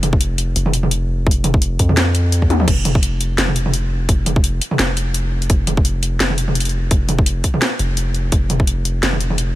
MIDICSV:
0, 0, Header, 1, 3, 480
1, 0, Start_track
1, 0, Tempo, 352941
1, 1719, Time_signature, 4, 2, 24, 8
1, 12991, End_track
2, 0, Start_track
2, 0, Title_t, "808-style bass"
2, 0, Program_c, 0, 38
2, 0, Note_on_c, 0, 29, 99
2, 743, Note_off_c, 0, 29, 0
2, 763, Note_on_c, 0, 29, 100
2, 1704, Note_off_c, 0, 29, 0
2, 1721, Note_on_c, 0, 29, 100
2, 2423, Note_off_c, 0, 29, 0
2, 2442, Note_on_c, 0, 41, 97
2, 3271, Note_off_c, 0, 41, 0
2, 3271, Note_on_c, 0, 40, 97
2, 3624, Note_off_c, 0, 40, 0
2, 3639, Note_on_c, 0, 29, 98
2, 4582, Note_off_c, 0, 29, 0
2, 4598, Note_on_c, 0, 29, 98
2, 5542, Note_off_c, 0, 29, 0
2, 5560, Note_on_c, 0, 29, 99
2, 6263, Note_off_c, 0, 29, 0
2, 6515, Note_on_c, 0, 29, 101
2, 7460, Note_off_c, 0, 29, 0
2, 7478, Note_on_c, 0, 29, 102
2, 8422, Note_off_c, 0, 29, 0
2, 8437, Note_on_c, 0, 29, 98
2, 9381, Note_off_c, 0, 29, 0
2, 9399, Note_on_c, 0, 29, 98
2, 10102, Note_off_c, 0, 29, 0
2, 10600, Note_on_c, 0, 29, 101
2, 11303, Note_off_c, 0, 29, 0
2, 11318, Note_on_c, 0, 29, 99
2, 12262, Note_off_c, 0, 29, 0
2, 12282, Note_on_c, 0, 29, 104
2, 12991, Note_off_c, 0, 29, 0
2, 12991, End_track
3, 0, Start_track
3, 0, Title_t, "Drums"
3, 40, Note_on_c, 9, 42, 60
3, 40, Note_on_c, 9, 45, 54
3, 174, Note_on_c, 9, 36, 106
3, 176, Note_off_c, 9, 42, 0
3, 176, Note_off_c, 9, 45, 0
3, 281, Note_on_c, 9, 42, 81
3, 310, Note_off_c, 9, 36, 0
3, 417, Note_off_c, 9, 42, 0
3, 519, Note_on_c, 9, 42, 66
3, 655, Note_off_c, 9, 42, 0
3, 760, Note_on_c, 9, 42, 77
3, 895, Note_on_c, 9, 45, 64
3, 896, Note_off_c, 9, 42, 0
3, 1000, Note_on_c, 9, 42, 64
3, 1031, Note_off_c, 9, 45, 0
3, 1131, Note_on_c, 9, 45, 55
3, 1136, Note_off_c, 9, 42, 0
3, 1242, Note_on_c, 9, 42, 75
3, 1267, Note_off_c, 9, 45, 0
3, 1378, Note_off_c, 9, 42, 0
3, 1721, Note_on_c, 9, 36, 119
3, 1784, Note_on_c, 9, 42, 83
3, 1857, Note_off_c, 9, 36, 0
3, 1920, Note_off_c, 9, 42, 0
3, 1959, Note_on_c, 9, 42, 64
3, 1959, Note_on_c, 9, 45, 55
3, 2094, Note_on_c, 9, 36, 108
3, 2095, Note_off_c, 9, 42, 0
3, 2095, Note_off_c, 9, 45, 0
3, 2200, Note_on_c, 9, 42, 80
3, 2230, Note_off_c, 9, 36, 0
3, 2336, Note_off_c, 9, 42, 0
3, 2439, Note_on_c, 9, 42, 69
3, 2441, Note_on_c, 9, 36, 61
3, 2573, Note_on_c, 9, 45, 68
3, 2575, Note_off_c, 9, 42, 0
3, 2577, Note_off_c, 9, 36, 0
3, 2681, Note_on_c, 9, 38, 119
3, 2681, Note_on_c, 9, 42, 84
3, 2709, Note_off_c, 9, 45, 0
3, 2817, Note_off_c, 9, 38, 0
3, 2817, Note_off_c, 9, 42, 0
3, 2920, Note_on_c, 9, 42, 67
3, 3056, Note_off_c, 9, 42, 0
3, 3160, Note_on_c, 9, 42, 80
3, 3294, Note_on_c, 9, 36, 61
3, 3296, Note_off_c, 9, 42, 0
3, 3402, Note_on_c, 9, 42, 39
3, 3402, Note_on_c, 9, 48, 64
3, 3430, Note_off_c, 9, 36, 0
3, 3534, Note_on_c, 9, 47, 69
3, 3538, Note_off_c, 9, 42, 0
3, 3538, Note_off_c, 9, 48, 0
3, 3640, Note_on_c, 9, 36, 122
3, 3641, Note_on_c, 9, 42, 84
3, 3641, Note_on_c, 9, 49, 78
3, 3670, Note_off_c, 9, 47, 0
3, 3776, Note_off_c, 9, 36, 0
3, 3777, Note_off_c, 9, 42, 0
3, 3777, Note_off_c, 9, 49, 0
3, 3878, Note_on_c, 9, 42, 66
3, 3878, Note_on_c, 9, 45, 57
3, 4014, Note_off_c, 9, 42, 0
3, 4014, Note_off_c, 9, 45, 0
3, 4014, Note_on_c, 9, 36, 108
3, 4118, Note_on_c, 9, 42, 82
3, 4150, Note_off_c, 9, 36, 0
3, 4254, Note_off_c, 9, 42, 0
3, 4360, Note_on_c, 9, 42, 71
3, 4496, Note_off_c, 9, 42, 0
3, 4600, Note_on_c, 9, 38, 124
3, 4600, Note_on_c, 9, 42, 81
3, 4734, Note_on_c, 9, 45, 66
3, 4736, Note_off_c, 9, 38, 0
3, 4736, Note_off_c, 9, 42, 0
3, 4839, Note_on_c, 9, 42, 72
3, 4870, Note_off_c, 9, 45, 0
3, 4975, Note_off_c, 9, 42, 0
3, 4975, Note_on_c, 9, 45, 57
3, 5080, Note_on_c, 9, 42, 84
3, 5111, Note_off_c, 9, 45, 0
3, 5216, Note_off_c, 9, 42, 0
3, 5559, Note_on_c, 9, 36, 127
3, 5560, Note_on_c, 9, 42, 82
3, 5695, Note_off_c, 9, 36, 0
3, 5696, Note_off_c, 9, 42, 0
3, 5797, Note_on_c, 9, 42, 67
3, 5797, Note_on_c, 9, 45, 56
3, 5932, Note_on_c, 9, 36, 112
3, 5933, Note_off_c, 9, 42, 0
3, 5933, Note_off_c, 9, 45, 0
3, 6036, Note_on_c, 9, 42, 82
3, 6068, Note_off_c, 9, 36, 0
3, 6172, Note_off_c, 9, 42, 0
3, 6277, Note_on_c, 9, 42, 72
3, 6409, Note_on_c, 9, 45, 65
3, 6413, Note_off_c, 9, 42, 0
3, 6517, Note_on_c, 9, 38, 125
3, 6517, Note_on_c, 9, 42, 87
3, 6545, Note_off_c, 9, 45, 0
3, 6653, Note_off_c, 9, 38, 0
3, 6653, Note_off_c, 9, 42, 0
3, 6758, Note_on_c, 9, 42, 72
3, 6894, Note_off_c, 9, 42, 0
3, 6996, Note_on_c, 9, 42, 86
3, 7132, Note_off_c, 9, 42, 0
3, 7370, Note_on_c, 9, 42, 38
3, 7476, Note_off_c, 9, 42, 0
3, 7476, Note_on_c, 9, 42, 87
3, 7477, Note_on_c, 9, 36, 127
3, 7612, Note_off_c, 9, 42, 0
3, 7613, Note_off_c, 9, 36, 0
3, 7714, Note_on_c, 9, 42, 66
3, 7714, Note_on_c, 9, 45, 52
3, 7850, Note_off_c, 9, 42, 0
3, 7850, Note_off_c, 9, 45, 0
3, 7852, Note_on_c, 9, 36, 111
3, 7954, Note_on_c, 9, 42, 81
3, 7988, Note_off_c, 9, 36, 0
3, 8090, Note_off_c, 9, 42, 0
3, 8197, Note_on_c, 9, 42, 69
3, 8333, Note_off_c, 9, 42, 0
3, 8436, Note_on_c, 9, 38, 127
3, 8436, Note_on_c, 9, 42, 81
3, 8570, Note_on_c, 9, 45, 61
3, 8572, Note_off_c, 9, 38, 0
3, 8572, Note_off_c, 9, 42, 0
3, 8675, Note_on_c, 9, 42, 72
3, 8706, Note_off_c, 9, 45, 0
3, 8811, Note_off_c, 9, 42, 0
3, 8811, Note_on_c, 9, 45, 53
3, 8913, Note_on_c, 9, 42, 80
3, 8947, Note_off_c, 9, 45, 0
3, 8982, Note_off_c, 9, 42, 0
3, 8982, Note_on_c, 9, 42, 64
3, 9048, Note_off_c, 9, 42, 0
3, 9048, Note_on_c, 9, 42, 57
3, 9103, Note_off_c, 9, 42, 0
3, 9103, Note_on_c, 9, 42, 44
3, 9239, Note_off_c, 9, 42, 0
3, 9396, Note_on_c, 9, 42, 81
3, 9399, Note_on_c, 9, 36, 127
3, 9532, Note_off_c, 9, 42, 0
3, 9535, Note_off_c, 9, 36, 0
3, 9637, Note_on_c, 9, 42, 62
3, 9637, Note_on_c, 9, 45, 53
3, 9772, Note_on_c, 9, 36, 117
3, 9773, Note_off_c, 9, 42, 0
3, 9773, Note_off_c, 9, 45, 0
3, 9878, Note_on_c, 9, 42, 83
3, 9908, Note_off_c, 9, 36, 0
3, 10014, Note_off_c, 9, 42, 0
3, 10117, Note_on_c, 9, 42, 67
3, 10119, Note_on_c, 9, 36, 65
3, 10252, Note_on_c, 9, 45, 59
3, 10253, Note_off_c, 9, 42, 0
3, 10255, Note_off_c, 9, 36, 0
3, 10360, Note_on_c, 9, 38, 127
3, 10360, Note_on_c, 9, 42, 80
3, 10388, Note_off_c, 9, 45, 0
3, 10496, Note_off_c, 9, 38, 0
3, 10496, Note_off_c, 9, 42, 0
3, 10600, Note_on_c, 9, 42, 66
3, 10736, Note_off_c, 9, 42, 0
3, 10840, Note_on_c, 9, 42, 80
3, 10976, Note_off_c, 9, 42, 0
3, 11077, Note_on_c, 9, 42, 38
3, 11213, Note_off_c, 9, 42, 0
3, 11316, Note_on_c, 9, 42, 78
3, 11319, Note_on_c, 9, 36, 123
3, 11452, Note_off_c, 9, 42, 0
3, 11455, Note_off_c, 9, 36, 0
3, 11558, Note_on_c, 9, 42, 61
3, 11558, Note_on_c, 9, 45, 51
3, 11693, Note_on_c, 9, 36, 109
3, 11694, Note_off_c, 9, 42, 0
3, 11694, Note_off_c, 9, 45, 0
3, 11796, Note_on_c, 9, 42, 77
3, 11829, Note_off_c, 9, 36, 0
3, 11932, Note_off_c, 9, 42, 0
3, 12039, Note_on_c, 9, 42, 69
3, 12175, Note_off_c, 9, 42, 0
3, 12280, Note_on_c, 9, 38, 123
3, 12280, Note_on_c, 9, 42, 78
3, 12413, Note_on_c, 9, 45, 61
3, 12416, Note_off_c, 9, 38, 0
3, 12416, Note_off_c, 9, 42, 0
3, 12519, Note_on_c, 9, 42, 67
3, 12549, Note_off_c, 9, 45, 0
3, 12652, Note_on_c, 9, 45, 51
3, 12655, Note_off_c, 9, 42, 0
3, 12758, Note_on_c, 9, 42, 75
3, 12788, Note_off_c, 9, 45, 0
3, 12894, Note_off_c, 9, 42, 0
3, 12991, End_track
0, 0, End_of_file